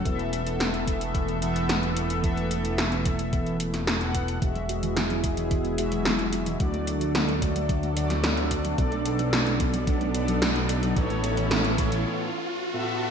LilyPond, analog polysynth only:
\new Staff \with { instrumentName = "Analog polysynth" } { \time 4/4 \key e \mixolydian \tempo 4 = 110 <e b a' e''>2~ <e b a' e''>8 <e b a' e''>4. | <e b a' e''>2~ <e b a' e''>8 r8. <e b a' fis''>8. | <gis fis' e''>2~ <gis fis' e''>8 <gis fis' e''>4. | <d a fis' d''>2~ <d a fis' d''>8 <d a fis' d''>4. |
<b, b a' d''>2~ <b, b a' d''>8 <b, b a' d''>4. | <a, b a' cis''>2~ <a, b a' cis''>8 r8. <a, b a' e''>8. | }